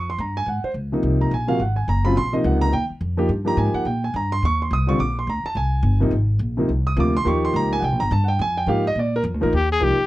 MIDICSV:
0, 0, Header, 1, 5, 480
1, 0, Start_track
1, 0, Tempo, 283019
1, 795, Time_signature, 4, 2, 24, 8
1, 17072, End_track
2, 0, Start_track
2, 0, Title_t, "Grand piano"
2, 0, Program_c, 0, 0
2, 165, Note_on_c, 0, 84, 86
2, 333, Note_off_c, 0, 84, 0
2, 346, Note_on_c, 0, 82, 71
2, 609, Note_off_c, 0, 82, 0
2, 628, Note_on_c, 0, 80, 93
2, 803, Note_off_c, 0, 80, 0
2, 817, Note_on_c, 0, 78, 69
2, 1084, Note_off_c, 0, 78, 0
2, 1088, Note_on_c, 0, 72, 78
2, 1202, Note_off_c, 0, 72, 0
2, 1563, Note_on_c, 0, 48, 59
2, 1567, Note_on_c, 0, 53, 62
2, 1587, Note_on_c, 0, 58, 54
2, 1589, Note_on_c, 0, 63, 69
2, 2058, Note_on_c, 0, 82, 80
2, 2194, Note_off_c, 0, 48, 0
2, 2196, Note_off_c, 0, 53, 0
2, 2206, Note_off_c, 0, 58, 0
2, 2207, Note_off_c, 0, 63, 0
2, 2235, Note_off_c, 0, 82, 0
2, 2271, Note_on_c, 0, 80, 80
2, 2502, Note_on_c, 0, 48, 65
2, 2510, Note_on_c, 0, 53, 56
2, 2516, Note_on_c, 0, 58, 63
2, 2517, Note_on_c, 0, 77, 91
2, 2529, Note_off_c, 0, 80, 0
2, 2534, Note_on_c, 0, 66, 64
2, 2683, Note_off_c, 0, 48, 0
2, 2687, Note_off_c, 0, 53, 0
2, 2690, Note_off_c, 0, 58, 0
2, 2699, Note_off_c, 0, 66, 0
2, 2704, Note_off_c, 0, 77, 0
2, 2732, Note_on_c, 0, 78, 70
2, 2989, Note_on_c, 0, 80, 73
2, 2999, Note_off_c, 0, 78, 0
2, 3179, Note_off_c, 0, 80, 0
2, 3205, Note_on_c, 0, 82, 93
2, 3468, Note_on_c, 0, 49, 64
2, 3473, Note_on_c, 0, 83, 96
2, 3474, Note_off_c, 0, 82, 0
2, 3481, Note_on_c, 0, 54, 58
2, 3491, Note_on_c, 0, 60, 62
2, 3491, Note_on_c, 0, 65, 76
2, 3644, Note_off_c, 0, 49, 0
2, 3651, Note_off_c, 0, 54, 0
2, 3655, Note_off_c, 0, 60, 0
2, 3656, Note_off_c, 0, 65, 0
2, 3660, Note_off_c, 0, 83, 0
2, 3684, Note_on_c, 0, 84, 105
2, 3942, Note_on_c, 0, 48, 62
2, 3953, Note_off_c, 0, 84, 0
2, 3954, Note_on_c, 0, 75, 74
2, 3958, Note_on_c, 0, 53, 59
2, 3963, Note_on_c, 0, 58, 59
2, 3975, Note_on_c, 0, 63, 72
2, 4140, Note_off_c, 0, 75, 0
2, 4159, Note_on_c, 0, 78, 81
2, 4430, Note_off_c, 0, 78, 0
2, 4434, Note_on_c, 0, 82, 105
2, 4580, Note_off_c, 0, 48, 0
2, 4588, Note_off_c, 0, 53, 0
2, 4590, Note_off_c, 0, 58, 0
2, 4596, Note_off_c, 0, 63, 0
2, 4619, Note_off_c, 0, 82, 0
2, 4632, Note_on_c, 0, 79, 93
2, 4801, Note_off_c, 0, 79, 0
2, 5381, Note_on_c, 0, 53, 72
2, 5389, Note_on_c, 0, 63, 66
2, 5390, Note_on_c, 0, 58, 69
2, 5407, Note_on_c, 0, 67, 84
2, 5558, Note_off_c, 0, 53, 0
2, 5562, Note_off_c, 0, 63, 0
2, 5563, Note_off_c, 0, 58, 0
2, 5571, Note_off_c, 0, 67, 0
2, 5845, Note_on_c, 0, 53, 65
2, 5862, Note_on_c, 0, 58, 58
2, 5871, Note_on_c, 0, 63, 55
2, 5872, Note_on_c, 0, 67, 70
2, 5894, Note_on_c, 0, 82, 97
2, 6068, Note_off_c, 0, 82, 0
2, 6072, Note_on_c, 0, 80, 82
2, 6344, Note_off_c, 0, 80, 0
2, 6350, Note_on_c, 0, 78, 90
2, 6490, Note_off_c, 0, 53, 0
2, 6498, Note_off_c, 0, 58, 0
2, 6502, Note_off_c, 0, 63, 0
2, 6503, Note_off_c, 0, 67, 0
2, 6535, Note_off_c, 0, 78, 0
2, 6552, Note_on_c, 0, 79, 75
2, 6824, Note_off_c, 0, 79, 0
2, 6856, Note_on_c, 0, 80, 75
2, 7028, Note_off_c, 0, 80, 0
2, 7057, Note_on_c, 0, 82, 89
2, 7316, Note_off_c, 0, 82, 0
2, 7330, Note_on_c, 0, 84, 101
2, 7505, Note_off_c, 0, 84, 0
2, 7549, Note_on_c, 0, 85, 104
2, 7803, Note_off_c, 0, 85, 0
2, 7836, Note_on_c, 0, 84, 78
2, 7998, Note_off_c, 0, 84, 0
2, 8024, Note_on_c, 0, 87, 85
2, 8260, Note_on_c, 0, 50, 62
2, 8276, Note_on_c, 0, 55, 58
2, 8280, Note_off_c, 0, 87, 0
2, 8286, Note_on_c, 0, 60, 61
2, 8287, Note_on_c, 0, 85, 94
2, 8297, Note_on_c, 0, 65, 73
2, 8436, Note_off_c, 0, 50, 0
2, 8444, Note_off_c, 0, 55, 0
2, 8449, Note_off_c, 0, 60, 0
2, 8455, Note_off_c, 0, 65, 0
2, 8463, Note_off_c, 0, 85, 0
2, 8478, Note_on_c, 0, 86, 91
2, 8747, Note_off_c, 0, 86, 0
2, 8796, Note_on_c, 0, 84, 77
2, 8958, Note_off_c, 0, 84, 0
2, 8981, Note_on_c, 0, 82, 86
2, 9238, Note_off_c, 0, 82, 0
2, 9255, Note_on_c, 0, 81, 97
2, 9428, Note_off_c, 0, 81, 0
2, 9442, Note_on_c, 0, 80, 87
2, 10145, Note_off_c, 0, 80, 0
2, 10175, Note_on_c, 0, 48, 73
2, 10191, Note_on_c, 0, 53, 68
2, 10194, Note_on_c, 0, 58, 71
2, 10213, Note_on_c, 0, 63, 79
2, 10354, Note_off_c, 0, 48, 0
2, 10362, Note_off_c, 0, 53, 0
2, 10364, Note_off_c, 0, 58, 0
2, 10373, Note_off_c, 0, 63, 0
2, 11142, Note_on_c, 0, 48, 67
2, 11149, Note_on_c, 0, 53, 64
2, 11170, Note_on_c, 0, 58, 65
2, 11174, Note_on_c, 0, 63, 66
2, 11318, Note_off_c, 0, 48, 0
2, 11322, Note_off_c, 0, 53, 0
2, 11332, Note_off_c, 0, 58, 0
2, 11335, Note_off_c, 0, 63, 0
2, 11647, Note_on_c, 0, 87, 87
2, 11815, Note_on_c, 0, 48, 65
2, 11825, Note_off_c, 0, 87, 0
2, 11836, Note_on_c, 0, 53, 60
2, 11837, Note_on_c, 0, 58, 59
2, 11850, Note_on_c, 0, 65, 70
2, 11871, Note_on_c, 0, 86, 86
2, 12077, Note_off_c, 0, 48, 0
2, 12087, Note_off_c, 0, 53, 0
2, 12088, Note_off_c, 0, 58, 0
2, 12095, Note_off_c, 0, 65, 0
2, 12126, Note_off_c, 0, 86, 0
2, 12153, Note_on_c, 0, 84, 109
2, 12286, Note_on_c, 0, 53, 69
2, 12298, Note_on_c, 0, 58, 66
2, 12308, Note_on_c, 0, 63, 61
2, 12317, Note_on_c, 0, 67, 77
2, 12319, Note_off_c, 0, 84, 0
2, 12337, Note_on_c, 0, 85, 93
2, 12599, Note_off_c, 0, 85, 0
2, 12631, Note_on_c, 0, 84, 96
2, 12799, Note_off_c, 0, 84, 0
2, 12824, Note_on_c, 0, 82, 100
2, 13083, Note_off_c, 0, 82, 0
2, 13105, Note_on_c, 0, 80, 101
2, 13211, Note_on_c, 0, 78, 57
2, 13249, Note_off_c, 0, 78, 0
2, 13256, Note_off_c, 0, 53, 0
2, 13262, Note_off_c, 0, 58, 0
2, 13267, Note_off_c, 0, 63, 0
2, 13272, Note_off_c, 0, 67, 0
2, 13276, Note_off_c, 0, 80, 0
2, 13297, Note_on_c, 0, 79, 89
2, 13561, Note_off_c, 0, 79, 0
2, 13568, Note_on_c, 0, 82, 100
2, 13748, Note_off_c, 0, 82, 0
2, 13775, Note_on_c, 0, 81, 95
2, 13975, Note_on_c, 0, 78, 67
2, 14005, Note_off_c, 0, 78, 0
2, 14040, Note_off_c, 0, 81, 0
2, 14047, Note_on_c, 0, 79, 88
2, 14228, Note_off_c, 0, 79, 0
2, 14272, Note_on_c, 0, 80, 95
2, 14529, Note_off_c, 0, 80, 0
2, 14543, Note_on_c, 0, 79, 89
2, 14706, Note_on_c, 0, 53, 65
2, 14716, Note_on_c, 0, 58, 62
2, 14717, Note_off_c, 0, 79, 0
2, 14726, Note_on_c, 0, 77, 94
2, 14729, Note_on_c, 0, 63, 61
2, 14742, Note_on_c, 0, 67, 76
2, 14966, Note_off_c, 0, 53, 0
2, 14971, Note_off_c, 0, 58, 0
2, 14977, Note_off_c, 0, 63, 0
2, 14984, Note_off_c, 0, 67, 0
2, 14996, Note_off_c, 0, 77, 0
2, 15049, Note_on_c, 0, 75, 100
2, 15211, Note_off_c, 0, 75, 0
2, 15251, Note_on_c, 0, 74, 82
2, 15500, Note_off_c, 0, 74, 0
2, 15533, Note_on_c, 0, 70, 94
2, 15633, Note_off_c, 0, 70, 0
2, 15958, Note_on_c, 0, 53, 76
2, 15967, Note_on_c, 0, 58, 74
2, 15969, Note_on_c, 0, 63, 74
2, 15991, Note_on_c, 0, 70, 87
2, 16133, Note_off_c, 0, 53, 0
2, 16137, Note_off_c, 0, 58, 0
2, 16138, Note_off_c, 0, 63, 0
2, 16149, Note_off_c, 0, 70, 0
2, 16623, Note_on_c, 0, 53, 62
2, 16630, Note_on_c, 0, 58, 60
2, 16649, Note_on_c, 0, 63, 58
2, 16654, Note_on_c, 0, 67, 75
2, 16887, Note_off_c, 0, 53, 0
2, 16891, Note_off_c, 0, 58, 0
2, 16900, Note_off_c, 0, 63, 0
2, 16902, Note_off_c, 0, 67, 0
2, 17072, End_track
3, 0, Start_track
3, 0, Title_t, "Trumpet"
3, 0, Program_c, 1, 56
3, 16205, Note_on_c, 1, 67, 80
3, 16448, Note_off_c, 1, 67, 0
3, 16488, Note_on_c, 1, 68, 92
3, 16684, Note_on_c, 1, 67, 83
3, 16709, Note_off_c, 1, 68, 0
3, 17072, Note_off_c, 1, 67, 0
3, 17072, End_track
4, 0, Start_track
4, 0, Title_t, "Upright bass"
4, 0, Program_c, 2, 32
4, 0, Note_on_c, 2, 41, 82
4, 300, Note_off_c, 2, 41, 0
4, 314, Note_on_c, 2, 43, 89
4, 773, Note_off_c, 2, 43, 0
4, 783, Note_on_c, 2, 44, 72
4, 1055, Note_off_c, 2, 44, 0
4, 1259, Note_on_c, 2, 37, 75
4, 1730, Note_off_c, 2, 37, 0
4, 1745, Note_on_c, 2, 36, 83
4, 2213, Note_off_c, 2, 36, 0
4, 2225, Note_on_c, 2, 34, 81
4, 2692, Note_off_c, 2, 34, 0
4, 2703, Note_on_c, 2, 32, 71
4, 3170, Note_off_c, 2, 32, 0
4, 3185, Note_on_c, 2, 30, 79
4, 3651, Note_off_c, 2, 30, 0
4, 3660, Note_on_c, 2, 34, 70
4, 4127, Note_off_c, 2, 34, 0
4, 4143, Note_on_c, 2, 37, 90
4, 4608, Note_off_c, 2, 37, 0
4, 4623, Note_on_c, 2, 39, 82
4, 4889, Note_off_c, 2, 39, 0
4, 5099, Note_on_c, 2, 41, 86
4, 5565, Note_off_c, 2, 41, 0
4, 5577, Note_on_c, 2, 43, 81
4, 6044, Note_off_c, 2, 43, 0
4, 6053, Note_on_c, 2, 44, 93
4, 6323, Note_off_c, 2, 44, 0
4, 6532, Note_on_c, 2, 46, 80
4, 7000, Note_off_c, 2, 46, 0
4, 7016, Note_on_c, 2, 43, 82
4, 7482, Note_off_c, 2, 43, 0
4, 7505, Note_on_c, 2, 39, 79
4, 7967, Note_off_c, 2, 39, 0
4, 7981, Note_on_c, 2, 36, 88
4, 8445, Note_off_c, 2, 36, 0
4, 8462, Note_on_c, 2, 34, 73
4, 8926, Note_off_c, 2, 34, 0
4, 8938, Note_on_c, 2, 38, 76
4, 9205, Note_off_c, 2, 38, 0
4, 9413, Note_on_c, 2, 36, 81
4, 9871, Note_off_c, 2, 36, 0
4, 9881, Note_on_c, 2, 31, 93
4, 10351, Note_off_c, 2, 31, 0
4, 10361, Note_on_c, 2, 32, 83
4, 10831, Note_off_c, 2, 32, 0
4, 10842, Note_on_c, 2, 34, 85
4, 11317, Note_off_c, 2, 34, 0
4, 11342, Note_on_c, 2, 36, 79
4, 11808, Note_off_c, 2, 36, 0
4, 11815, Note_on_c, 2, 38, 98
4, 12284, Note_off_c, 2, 38, 0
4, 12302, Note_on_c, 2, 39, 80
4, 12769, Note_off_c, 2, 39, 0
4, 12783, Note_on_c, 2, 37, 84
4, 13250, Note_off_c, 2, 37, 0
4, 13265, Note_on_c, 2, 36, 81
4, 13427, Note_off_c, 2, 36, 0
4, 13427, Note_on_c, 2, 34, 59
4, 13586, Note_off_c, 2, 34, 0
4, 13594, Note_on_c, 2, 31, 78
4, 13739, Note_off_c, 2, 31, 0
4, 13752, Note_on_c, 2, 43, 96
4, 14216, Note_off_c, 2, 43, 0
4, 14232, Note_on_c, 2, 41, 88
4, 14685, Note_off_c, 2, 41, 0
4, 14695, Note_on_c, 2, 44, 81
4, 15169, Note_off_c, 2, 44, 0
4, 15184, Note_on_c, 2, 46, 76
4, 15654, Note_off_c, 2, 46, 0
4, 15665, Note_on_c, 2, 41, 95
4, 15836, Note_off_c, 2, 41, 0
4, 15836, Note_on_c, 2, 38, 62
4, 15984, Note_off_c, 2, 38, 0
4, 15994, Note_on_c, 2, 34, 64
4, 16142, Note_off_c, 2, 34, 0
4, 16155, Note_on_c, 2, 39, 79
4, 16620, Note_off_c, 2, 39, 0
4, 16628, Note_on_c, 2, 36, 84
4, 16898, Note_off_c, 2, 36, 0
4, 17072, End_track
5, 0, Start_track
5, 0, Title_t, "Muted upright bass strokes"
5, 1075, Note_on_c, 9, 29, 38
5, 1245, Note_off_c, 9, 29, 0
5, 4917, Note_on_c, 9, 29, 35
5, 5086, Note_off_c, 9, 29, 0
5, 6341, Note_on_c, 9, 29, 44
5, 6510, Note_off_c, 9, 29, 0
5, 9216, Note_on_c, 9, 29, 38
5, 9385, Note_off_c, 9, 29, 0
5, 16928, Note_on_c, 9, 29, 37
5, 17072, Note_off_c, 9, 29, 0
5, 17072, End_track
0, 0, End_of_file